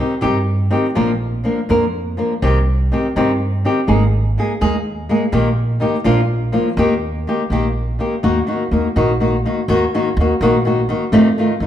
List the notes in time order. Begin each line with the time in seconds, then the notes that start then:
0.00 D#3 C4 D#4 G4
0.21 G2 C3 D#3 C4 D#4 G4
0.71 D#3 C4 D#4 G4
0.95 A#1 A#2 F3 A#3 D4 A#4
1.44 F3 A#3 D4 A#4
1.69 F2 A#2 F3 A#3 D4 A#4
2.17 F3 A#3 D4 A#4
2.42 C2 C3 D#3 C4 D#4 G4
2.92 D#3 C4 D#4 G4
3.16 G2 C3 D#3 C4 D#4 G4
3.65 D#3 C4 D#4 G4
3.87 G#1 G#3 A#3 D#4 G#4
4.38 G#3 A#3 D#4 G#4
4.61 D#2 G#3 A#3 D#4 G#4
5.09 G#3 A#3 D#4 G#4
5.32 A#1 A#2 D#3 A#3 D#4 G4
5.80 D#3 A#3 D#4 G4
6.04 A#1 A#2 F3 A#3 D4 F4
6.52 F3 A#3 D4 F4
6.77 D#2 D#3 A#3 D#4 G4
7.27 D#3 A#3 D#4 G4
7.50 A#1 D#3 A#3 D#4 G4
7.99 D#3 A#3 D#4 G4
8.23 D#2 D#3 A#3 D#4 F#4
8.47 D#3 A#3 D#4 F#4
8.71 D#2 D#3 A#3 D#4 F#4
8.96 A#1 D#3 A#3 D#4 F#4
9.20 D#3 A#3 D#4 F#4
9.45 D#3 A#3 D#4 F#4
9.68 D#2 D#3 A#3 D#4 F#4
9.94 D#3 A#3 D#4 F#4
10.17 D#2 D#3 A#3
10.21 D#4 F#4
10.41 A#1 D#3 A#3 D#4 F#4
10.65 D#3 A#3 D#4 F#4
10.89 D#3 A#3 D#4 F#4
11.12 F2 C3 D#3 A3 D#4 F4
11.38 D#3 A3 D#4 F4
11.60 F2 D#3 A3 D#4 F4